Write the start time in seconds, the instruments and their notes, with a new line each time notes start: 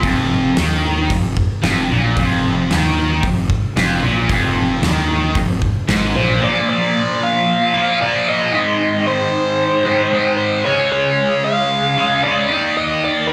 0.03 fingered electric bass F1, overdriven electric guitar F2, kick, open hi-hat
0.56 fingered electric bass D#2, overdriven electric guitar D#3, snare, open hi-hat
1.10 fingered electric bass F1, overdriven electric guitar F2, kick, open hi-hat
1.37 kick
1.63 fingered electric bass F1, overdriven electric guitar F2, snare, open hi-hat
1.91 fingered electric bass A#1, overdriven electric guitar A#2
2.17 fingered electric bass F1, overdriven electric guitar F2, kick, open hi-hat
2.70 fingered electric bass D#2, overdriven electric guitar D#3, snare, open hi-hat
3.22 fingered electric bass F1, overdriven electric guitar F2, kick, open hi-hat
3.50 kick
3.76 fingered electric bass F1, overdriven electric guitar F2, snare, open hi-hat
4.03 fingered electric bass A#1, overdriven electric guitar A#2
4.29 fingered electric bass F1, overdriven electric guitar F2, kick, open hi-hat
4.82 fingered electric bass D#2, overdriven electric guitar D#3, snare, open hi-hat
5.35 fingered electric bass F1, overdriven electric guitar F2, kick, open hi-hat
5.62 kick
5.88 fingered electric bass G#1, overdriven electric guitar G#2, snare, open hi-hat
6.15 fingered electric bass A#1, overdriven electric guitar A#2, lead electric guitar C5
6.41 overdriven electric guitar A#2 F3 A#3, lead electric guitar D5
6.70 lead electric guitar D5
7.23 lead electric guitar F5
7.74 overdriven electric guitar A#2 F3 A#3
8.01 overdriven electric guitar A#2 F3 A#3, lead electric guitar D5
8.29 lead electric guitar D#5
8.52 overdriven electric guitar G#2 D#3 G#3
9.07 lead electric guitar C5
9.85 overdriven electric guitar G#2 D#3 G#3
10.11 overdriven electric guitar G#2 D#3 G#3
10.37 lead electric guitar C5
10.65 overdriven electric guitar C#3 G#3 C#4, lead electric guitar C#5
10.92 lead electric guitar C#5
11.44 lead electric guitar F5
11.97 overdriven electric guitar C#3 G#3 C#4
12.23 overdriven electric guitar C#3 G#3 C#4, lead electric guitar D5
12.49 overdriven electric guitar D#3 A#3 D#4
12.77 lead electric guitar D#5
13.05 lead electric guitar D5
13.28 lead electric guitar C5